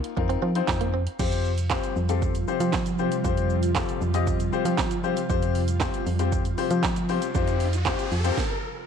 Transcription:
Already playing: A#3 D#4 F4 A#4
0.04 closed hi-hat
0.17 F2 C4 D#4 F4 A#4, muted clean electric guitar stroke, kick
0.29 C4, closed hi-hat
0.42 F3 C4
0.55 C4 D#4 F4 C5, closed hi-hat
0.68 F2, muted clean electric guitar stroke, kick, snare, clap
0.81 A#3, closed hi-hat
0.94 C4
1.07 closed hi-hat
1.19 F2 C3 F3 G3 C4 F4 G4 C5, kick, crash, shaker
1.32 closed hi-hat, shaker
1.45 shaker
1.58 closed hi-hat, shaker
1.70 C4 F4 G4 C5, kick, snare, clap, shaker
1.84 closed hi-hat, shaker
1.96 F2, shaker
2.09 C4 F4 G4 A4, closed hi-hat, shaker
2.22 kick, shaker
2.35 closed hi-hat, shaker
2.48 C4 F4 G4 C5, shaker
2.60 F3, closed hi-hat, shaker
2.73 kick, snare, clap, shaker
2.86 closed hi-hat, shaker
2.99 C4 F4 G4 C5, shaker
3.12 closed hi-hat, shaker
3.24 F2 C4 F4 G4 C5, kick, shaker
3.37 closed hi-hat, shaker
3.50 shaker
3.63 closed hi-hat, shaker
3.75 C4 F4 G4 A4, kick, snare, clap, shaker
3.89 closed hi-hat, shaker
4.01 F2, shaker
4.14 C4 F4 G4 D#5, closed hi-hat, shaker
4.27 kick, shaker
4.40 closed hi-hat, shaker
4.52 C4 F4 G4 C5, shaker
4.65 F3, closed hi-hat, shaker
4.78 kick, snare, clap, shaker
4.91 closed hi-hat, shaker
5.04 C4 F4 G4 C5, shaker
5.17 closed hi-hat, shaker
5.29 F2 C4 F4 G4 C5, kick, riser, shaker
5.43 closed hi-hat, shaker
5.55 open hi-hat, shaker
5.68 closed hi-hat, shaker
5.80 C4 F4 G4 C5, kick, snare, clap, shaker
5.94 closed hi-hat, shaker
6.07 F2, open hi-hat, shaker
6.19 C4 F4 G4 C5, closed hi-hat, shaker
6.32 kick, shaker
6.45 closed hi-hat, shaker
6.58 C4 F4 G4 C5, open hi-hat, shaker
6.71 F3, closed hi-hat, shaker
6.83 kick, snare, clap, shaker
6.96 closed hi-hat, shaker
7.09 C4 F4 G4 C5, open hi-hat, shaker
7.22 closed hi-hat, shaker
7.35 F2 C4 F4 G4 C5, kick, shaker
7.47 closed hi-hat, shaker
7.60 open hi-hat, shaker
7.73 closed hi-hat, shaker
7.85 C4 F4 G4 C5, kick, snare, clap, shaker
7.99 closed hi-hat, shaker
8.12 F2, open hi-hat, shaker
8.24 C4 F4 G4 C5, closed hi-hat, shaker
8.37 kick, snare

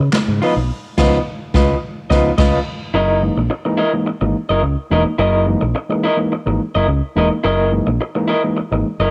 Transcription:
0.00 C#3, muted clean electric guitar stroke
0.13 B3 D#4, muted fingered electric bass stroke, muted clean electric guitar stroke, snare, clap, closed hi-hat
0.28 G#2 C#3
0.42 F3 B3 D#4 F4 B4 D#5, open hi-hat
0.56 B1, muted clean electric guitar stroke
0.98 C#2 F3 B3 D#4 F4 B4 D#5, kick, snare, crash
1.54 C#2 F4 B4 D#5, kick, snare
2.10 C#2 F3 B3 D#4 F4 B4 D#5, kick, snare
2.38 C#2 F4 B4 D#5, kick, snare, crash
2.94 F#1 E4 A#4 D#5
3.10 A#3 D#4
3.22 E3 G#3 A#3 D#4
3.37 A#1, muted clean electric guitar stroke
3.50 muted clean electric guitar stroke
3.65 E3 G#3 A#3 D#4, muted clean electric guitar stroke
3.77 E4 A#4 D#5
3.93 E3 G#3 A#3 D#4
4.06 muted clean electric guitar stroke
4.21 G#1 E3 G#3 A#3 D#4, muted clean electric guitar stroke
4.49 F#1 E4 A#4 D#5
4.63 C#2, muted clean electric guitar stroke
4.91 E1 E3 G#3 A#3 D#4 E4 A#4 D#5
5.05 A#3 D#4, muted clean electric guitar stroke
5.19 F#1 E4 A#4 D#5
5.34 A#3 D#4
5.47 E3 G#3 A#3 D#4
5.61 A#1, muted clean electric guitar stroke
5.75 muted clean electric guitar stroke
5.89 E3 G#3 A#3 D#4, muted clean electric guitar stroke
6.04 E4 A#4 D#5
6.17 E3 G#3 A#3 D#4, muted clean electric guitar stroke
6.32 muted clean electric guitar stroke
6.46 G#1 E3 G#3 A#3 D#4, muted clean electric guitar stroke
6.75 F#1 E4 A#4 D#5
6.88 C#2, muted clean electric guitar stroke
7.15 E1 E3 G#3 A#3 D#4 E4 A#4 D#5
7.31 A#3 D#4, muted clean electric guitar stroke
7.43 F#1 E4 A#4 D#5
7.59 A#3 D#4
7.72 E3 G#3 A#3 D#4
7.87 A#1, muted clean electric guitar stroke
8.01 muted clean electric guitar stroke
8.15 E3 G#3 A#3 D#4, muted clean electric guitar stroke
8.28 E4 A#4 D#5
8.44 E3 G#3 A#3 D#4, muted clean electric guitar stroke
8.56 muted clean electric guitar stroke
8.71 G#1 E3 G#3 A#3 D#4, muted clean electric guitar stroke
8.99 F#1 E4 A#4 D#5

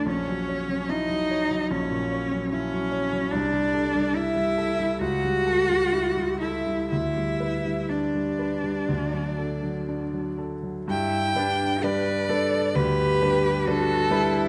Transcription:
0.06 A#1 C#4 C#5
0.28 F#3
0.49 C#5
0.69 F#3
0.89 D#4 E4 D#5
1.09 F#3
1.31 C#5
1.51 F#3
1.71 A#1 C#4 C#5
1.91 A#2
2.12 C#5
2.32 F#3
2.52 C#4 E4 C#5
2.73 F#3
2.92 C#5
3.13 F#3
3.31 C2 D4 D5
3.53 G3
3.74 A4
3.95 G3
4.15 E4 E5
4.36 G3
4.58 A4
4.80 G3
5.00 C#2 F#4 F#5
5.24 G3
5.47 A4
5.69 G3
5.92 E4
6.17 G3
6.40 E4 A4 E5
6.67 G3
6.90 D2 E4 E5
7.16 G3
7.40 B4
7.66 G3
7.89 D4 D5
8.15 G3
8.39 B4
8.64 G3
8.88 D2
9.13 F#3
9.38 A4
9.63 F#3
9.89 D4
10.13 F#3
10.38 A4
10.63 F#3
10.88 G2 E4 G5
11.35 G3 D4 B4
11.83 G3 D4 B4 D5
12.29 G3 D4 A4 B4
12.75 D2 G4 B4
13.22 G3 D4 B4
13.66 G3 D4 F#4 A4 B4
14.10 G3 D4 E4 B4

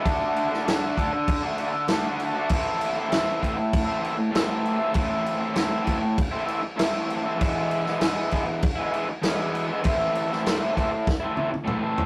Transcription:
0.02 D3 A3 D4 F#4, kick
0.06 crash
0.36 crash
0.49 A3 D4 F#4
0.54 snare
0.65 D3 A3 D4 F#4, snare, crash
0.96 D3 A3 D4 F#4, kick, crash
1.12 muted overdriven electric guitar stroke
1.28 kick, crash
1.43 A3 D4 F#4
1.57 D3 A3 D4 F#4, crash
1.72 muted overdriven electric guitar stroke
1.88 D3 A3 D4 F#4, snare, crash
2.05 A3 D4 F#4
2.20 crash
2.35 A3 D4 F#4
2.49 A2 E3 A3 C4 E4, kick, crash
2.81 crash
2.96 A3 C4 E4
3.10 A2 E3 A3 C4 E4, snare, crash
3.41 E3 A3 C4 E4, kick, crash
3.57 muted overdriven electric guitar stroke
3.73 kick, crash
3.85 A3 C4 E4
4.00 E3 A3 C4 E4
4.04 crash
4.17 muted overdriven electric guitar stroke
4.31 A2 E3 A3 C4 E4, crash
4.36 snare
4.46 A3 C4 E4
4.66 crash
4.76 A3 C4 E4
4.92 A2 E3 A3 C4 E4, kick, crash
5.26 crash
5.39 A3 C4 E4
5.53 A2 E3 A3 C4 E4, snare, crash
5.84 E3 A3 C4 E4, kick, crash
6.01 muted overdriven electric guitar stroke
6.18 kick, crash
6.31 A3 C4 E4
6.44 E3 A3 C4 E4
6.48 crash
6.62 muted overdriven electric guitar stroke
6.76 A2 E3 A3 C4 E4, snare, crash
6.90 A3 C4 E4
7.10 crash
7.23 A3 C4 E4
7.36 E2 B2 E3 G#3 B3 E4
7.41 kick, crash
7.71 crash
7.85 E3 G#3 B3 E4, snare
7.99 E2 B2 E3 G#3 B3 E4, snare, crash
8.28 E3 G#3 B3 E4, crash
8.32 kick
8.46 muted overdriven electric guitar stroke
8.62 kick, crash
8.76 E3 G#3 B3 E4
8.92 E3 G#3 B3 E4, crash
9.09 muted overdriven electric guitar stroke
9.22 E2 B2 E3 G#3 B3 E4, snare, crash
9.38 E3 G#3 B3 E4
9.55 crash
9.67 E3 G#3 B3 E4
9.82 A2 E3 A3 C4 E4, kick, crash
10.15 crash
10.30 A3 C4 E4, snare
10.45 A2 E3 A3 C4 E4, snare, crash
10.75 E3 A3 C4 E4, kick, crash
10.91 muted overdriven electric guitar stroke
11.07 kick, snare
11.20 A3 C4 E4
11.35 E3 A3 C4, high tom
11.39 E4
11.51 muted overdriven electric guitar stroke, high tom
11.65 A2 E3 A3 C4 E4, mid tom
11.80 A3 C4 E4
11.98 floor tom

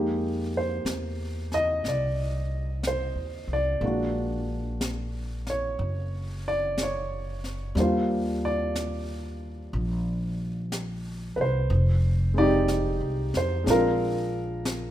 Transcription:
Already playing: F2 G#3 A#3 D#4 G4
0.57 C5
0.85 E2, brush sweep, snare, hi-hat pedal
1.52 D#5, snare
1.84 C2, brush sweep, snare
1.88 D5
2.83 brush sweep, snare, hi-hat pedal
2.87 C5
3.15 D#2
3.48 C2
3.53 D5
3.81 A#1 G#3 A#3 D4, brush sweep
3.86 F#4
4.81 brush sweep, snare, hi-hat pedal
5.47 C#5, snare
5.79 F#1, brush sweep
6.48 D5
6.78 brush sweep, snare, hi-hat pedal
6.83 C#5
7.44 snare
7.75 D#2 G3 A#3 D4, brush sweep, snare
7.80 F4 C5
8.45 D5
8.75 brush sweep, snare, hi-hat pedal
9.73 A#1, brush sweep
10.72 brush sweep, snare, hi-hat pedal
11.36 C2 B4
11.41 C5
11.70 F1, brush sweep
12.34 G#3 C4 D#4
12.38 G4 D5
12.68 brush sweep, snare, hi-hat pedal
13.00 C2
13.34 F2 C5, snare
13.64 A#1 G#3 C4 D4, brush sweep, snare
13.69 F4 A#4
14.65 brush sweep, snare, hi-hat pedal

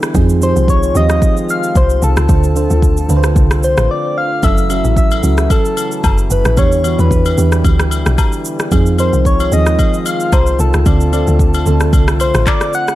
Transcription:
Already playing: D3 E3 G3 B3 D4 E4 G4 A4
0.03 cross-stick, shaker
0.14 F2 D#3 F3 G#3 C4 D#4 F4 G#4, kick, shaker
0.29 shaker
0.41 F3 C4 D#4 G4 C5, shaker
0.49 G#4
0.56 C2, shaker
0.68 C#5, kick, shaker
0.83 shaker
0.94 D#2 F3 C4 D#4 G4 D#5, shaker
1.10 cross-stick, shaker
1.22 kick, shaker
1.37 shaker
1.49 F5, shaker
1.64 shaker
1.75 C2 C5, kick, shaker
1.90 shaker
2.02 C2 A4, shaker
2.17 C#2, cross-stick, shaker
2.28 D2 D3 A3 D4 F4 C5, kick, shaker
2.44 shaker
2.55 D3 D4 F4 C5, shaker
2.70 D2, shaker
2.82 kick, shaker
2.97 shaker
3.09 D2 D3 D4 F4 B4, shaker
3.17 C5
3.24 cross-stick, shaker
3.36 C2, kick, shaker
3.51 cross-stick, shaker
3.63 C5, shaker
3.77 A1, cross-stick, shaker
3.91 D5
4.18 F5
4.42 F#1 C#3 E3 F#3 C#4 E4 A4 E5, kick, high agogo, shaker
4.58 shaker
4.69 F#3 C#4 E4 F#4, high agogo, shaker
4.85 A1, shaker
4.96 E5, kick, shaker
5.11 high agogo, shaker
5.23 C#2 F#3 C#4 E4 F#4, shaker
5.38 cross-stick, shaker
5.50 A4, kick, high agogo, shaker
5.65 shaker
5.77 high agogo, shaker
5.92 shaker
6.04 F#1 A4, kick, high agogo, low woodblock, shaker
6.18 shaker
6.30 F#1 B4, shaker
6.45 A1, cross-stick, shaker
6.56 E2 D3 E3 G3 B3 D4 G4 C#5, kick, high agogo, shaker
6.72 shaker
6.83 E3 B3 D4 F#4, high agogo, shaker
6.99 E2 B4, shaker
7.11 kick, shaker
7.26 high agogo, shaker
7.37 E2 E3 B3 D4 G4, shaker
7.52 cross-stick, shaker
7.64 D2, kick, high agogo, shaker
7.80 cross-stick, shaker
7.91 high agogo, shaker
8.06 B1, cross-stick, shaker
8.18 kick, high agogo, low woodblock, shaker
8.33 shaker
8.45 shaker
8.60 cross-stick, shaker
8.71 F2 D#3 F3 G#3 C4 D#4 F4 G#4, kick, high agogo, shaker
8.86 shaker
8.98 F3 C4 D#4 A#4 C5, high agogo, shaker
9.13 C2, shaker
9.25 C#5, kick, shaker
9.40 high agogo, shaker
9.51 D#2 F3 C4 D#4 G#4 D#5, shaker
9.66 cross-stick, shaker
9.79 kick, high agogo, shaker
9.94 shaker
10.06 F5, high agogo, shaker
10.20 shaker
10.32 C2 C5, kick, high agogo, low woodblock, shaker
10.47 shaker
10.59 C2 A4, shaker
10.74 C#2, cross-stick, shaker
10.85 D2 D3 A3 C4 F4 D5, kick, high agogo, shaker
11.01 shaker
11.12 D3 C4 F4 D5, high agogo, shaker
11.27 D2, shaker
11.39 kick, shaker
11.54 high agogo, shaker
11.66 D2 D3 C4 F4 A4, shaker
11.80 cross-stick, shaker
11.93 C2, kick, high agogo, shaker
12.08 cross-stick, shaker
12.20 C5, high agogo, shaker
12.35 A1, cross-stick, shaker
12.47 D5, kick, clap, high agogo, low woodblock, shaker
12.61 cross-stick, shaker
12.74 F#5, shaker
12.88 cross-stick, shaker

